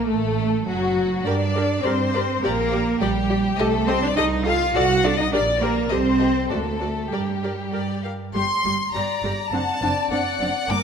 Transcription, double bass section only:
0.09 0.66 A1 medium
0.68 1.25 F#1 medium
1.26 1.77 G2 medium
1.84 2.35 G2 medium
2.42 2.94 A#1 medium
3.01 3.51 A#1 medium
3.58 4.10 C2 medium
4.17 4.68 C2 medium
4.75 5.25 C2 medium
5.32 5.83 A#1 medium
5.91 6.43 C2 medium
6.51 7.05 D2 medium
7.12 7.66 G2 medium
7.73 8.27 G2 medium
8.34 8.42 G1 medium
8.64 8.72 G1 medium
8.93 9.01 G1 medium
9.23 9.31 G1 medium
9.52 9.60 F#1 medium
9.81 9.89 F#1 medium
10.11 10.19 F#1 medium
10.40 10.48 F#1 medium
10.70 10.78 G1 medium

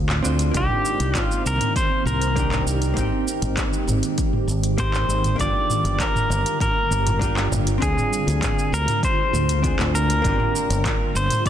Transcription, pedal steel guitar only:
0.57 1.18 G4 medium
1.18 1.43 F4 medium
1.47 1.76 A#4 medium
1.77 2.06 C5 loud
2.07 2.63 A#4 medium
4.80 5.36 C5 medium
5.41 6.02 D5 loud
6.01 6.60 A#4 medium
6.62 7.48 A#4 medium
7.82 8.76 G#4 medium
8.74 9.04 A#4 medium
9.05 9.91 C5 loud
9.95 11.19 A#4 medium
11.16 11.46 C5 medium

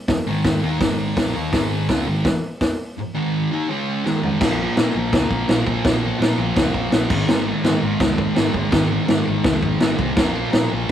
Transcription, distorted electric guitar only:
0.09 muted distorted electric guitar stroke medium
0.27 0.62 G#2 medium
0.27 0.59 D#3 loud
0.27 0.62 G#3 loud
0.61 0.78 D#3 medium
0.61 0.79 A#3 medium
0.61 0.80 D#4 medium
0.79 1.15 G#2 medium
0.79 1.16 D#3 medium
0.79 1.16 G#3 loud
1.16 1.34 A#2 loud
1.16 1.34 F3 loud
1.16 1.33 A#3 loud
1.34 1.51 D#3 medium
1.34 1.52 A#3 loud
1.34 1.53 D#4 loud
1.51 1.88 G#2 medium
1.51 1.88 D#3 medium
1.51 1.88 G#3 loud
1.89 2.06 C#3 loud
1.89 2.07 G#3 medium
1.89 2.07 C#4 loud
2.07 2.24 G#2 medium
2.07 2.25 D#3 medium
2.07 2.25 G#3 medium
2.98 muted distorted electric guitar stroke medium
3.14 3.50 G#2 loud
3.14 3.50 D#3 loud
3.14 3.51 G#3 loud
3.51 3.69 D#3 medium
3.51 3.69 A#3 medium
3.51 3.70 D#4 medium
3.69 4.05 C#3 medium
3.69 4.05 G#3 loud
3.69 4.06 C#4 medium
4.06 4.41 G#2 medium
4.06 4.39 D#3 medium
4.06 4.41 G#3 medium
4.39 4.76 A#2 loud
4.39 4.62 F3 loud
4.43 4.59 A#3 medium
4.59 4.78 F3 medium
4.59 4.80 A#3 medium
4.76 5.13 A#2 medium
4.76 4.97 F3 medium
4.80 4.93 A#3 loud
4.94 5.49 F3 medium
4.94 5.50 A#3 medium
5.48 5.84 A#2 medium
5.48 5.68 F3 medium
5.48 5.65 A#3 medium
5.66 5.86 F3 medium
5.66 5.88 A#3 medium
5.85 6.18 A#2 medium
5.85 6.05 F3 loud
5.85 6.02 A#3 loud
6.03 6.20 F3 medium
6.03 6.22 A#3 medium
6.19 6.56 A#2 medium
6.19 6.41 F3 loud
6.23 6.37 A#3 loud
6.38 6.93 F3 medium
6.38 6.95 A#3 medium
6.92 7.09 A#2 medium
6.92 7.09 F3 medium
6.92 7.11 A#3 medium
7.10 7.27 G#2 medium
7.10 7.29 D#3 medium
7.10 7.31 G#3 loud
7.28 7.64 G#2 loud
7.28 7.50 D#3 loud
7.28 7.46 G#3 loud
7.47 7.68 G#3 medium
7.51 7.66 D#3 medium
7.64 8.35 G#2 medium
7.64 7.85 D#3 loud
7.64 7.81 G#3 loud
7.82 8.38 G#3 medium
7.86 8.37 D#3 medium
8.35 8.69 G#2 medium
8.35 8.56 D#3 medium
8.35 8.52 G#3 loud
8.53 8.72 D#3 medium
8.53 8.73 G#3 medium
8.71 9.05 G#2 medium
8.71 8.91 D#3 loud
8.71 8.87 G#3 loud
8.88 9.07 D#3 medium
8.88 9.09 G#3 medium
9.06 9.44 G#2 medium
9.06 9.28 D#3 medium
9.06 9.24 G#3 loud
9.25 9.82 G#3 medium
9.29 9.81 D#3 medium
9.80 10.15 G#2 medium
9.80 10.00 D#3 medium
9.80 9.96 G#3 medium
9.97 10.14 D#3 medium
9.97 10.15 G#3 medium
10.15 10.50 A#2 loud
10.15 10.36 F3 loud
10.15 10.32 A#3 loud
10.33 10.52 F3 medium
10.33 10.54 A#3 medium
10.50 10.88 A#2 loud
10.50 10.73 F3 loud
10.50 10.69 A#3 medium
10.70 10.91 A#3 medium
10.74 10.91 F3 medium

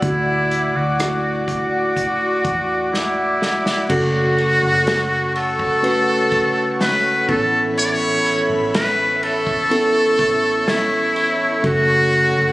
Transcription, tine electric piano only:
0.02 1.44 A2 soft
0.02 0.94 A3 medium
0.02 0.94 D4 soft
0.02 0.95 E4 soft
0.02 0.95 F#4 medium
0.99 2.83 A3 medium
0.99 2.83 D4 medium
0.99 2.83 E4 medium
0.99 2.84 F#4 medium
3.89 5.31 C#3 medium
3.89 5.73 A3 medium
3.89 5.74 C#4 medium
3.89 5.74 F#4 medium
3.89 5.74 A4 medium
5.82 7.28 A3 medium
5.82 7.27 C#4 medium
5.82 7.28 F#4 medium
5.82 7.29 B4 medium
7.28 8.70 A2 medium
7.28 8.70 E3 medium
7.28 9.12 B3 medium
7.28 9.12 C#4 medium
7.28 9.12 E4 medium
7.28 9.13 A4 medium
9.70 11.54 B3 medium
9.70 11.54 C#4 medium
9.70 11.54 E4 medium
9.70 11.55 A4 medium
11.63 12.52 C#3 medium
11.63 12.52 A3 medium
11.63 12.52 C#4 medium
11.63 12.52 F#4 medium
11.63 12.52 A4 medium

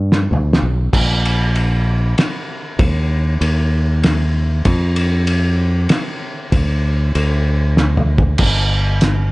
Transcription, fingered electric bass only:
0.00 0.26 G2 loud
0.31 0.58 D2 medium
0.62 0.90 B1 medium
0.93 2.13 A#1 medium
2.79 3.37 D#2 medium
3.41 4.62 D#2 medium
4.66 5.86 F2 loud
6.52 7.11 D2 loud
7.15 8.35 D2 medium
8.39 9.32 G1 medium

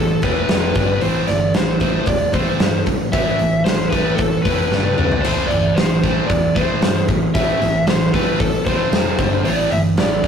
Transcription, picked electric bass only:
0.00 0.18 A1 medium
0.23 0.44 E1 medium
0.50 0.71 F1 medium
0.76 0.97 G1 medium
1.02 1.23 A1 medium
1.28 1.49 G1 medium
1.55 1.97 A1 medium
2.07 2.29 E1 medium
2.34 2.55 A1 medium
2.60 2.81 G2 medium
2.87 3.08 A1 medium
3.13 3.34 A1 medium
3.40 3.61 A1 medium
3.66 3.87 A1 medium
3.92 4.13 A1 medium
4.19 4.40 A1 medium
4.45 4.71 F1 medium
4.71 4.92 G1 medium
4.97 5.19 D2 medium
5.24 5.45 A1 medium
5.50 5.71 G1 medium
5.76 6.19 A1 medium
6.30 6.51 E1 medium
6.56 6.77 A1 medium
6.83 7.04 G2 medium
7.09 7.30 A1 medium
7.35 7.56 A1 medium
7.61 7.82 A1 medium
7.87 8.08 A1 medium
8.14 8.35 A1 medium
8.40 8.61 A1 medium
8.66 8.88 A1 medium
8.92 9.13 F1 medium
9.18 9.40 G1 medium
9.45 9.66 A1 medium
9.71 9.93 G1 medium
9.97 10.28 A1 loud

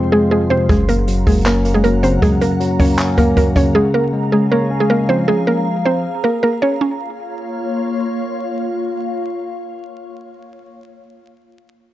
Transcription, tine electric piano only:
0.00 0.12 F2 loud
0.00 0.50 C3 medium
0.00 0.31 F3 medium
0.00 0.12 G#3 medium
0.00 0.71 C4 loud
0.12 0.69 G#3 medium
0.31 0.69 F3 medium
0.50 0.69 C3 medium
0.69 1.65 F#2 loud
1.07 1.83 F#3 medium
1.27 1.64 A#3 medium
1.46 2.41 C#4 loud
1.65 2.60 A#3 medium
1.84 2.59 F#3 medium
2.03 2.99 C#3 medium
2.22 3.18 F#2 loud
2.60 3.35 F#3 medium
2.79 3.16 A#3 medium
2.98 3.75 C#4 loud
3.18 3.75 A#3 medium
3.37 3.75 F#3 medium
3.56 3.74 C#3 medium
3.75 4.71 C#3 loud
4.13 4.89 G#3 loud
4.32 4.70 C#4 medium
4.52 5.47 C#5 loud
4.71 5.66 C#4 medium
4.90 5.85 G#3 medium
5.09 6.04 F3 medium

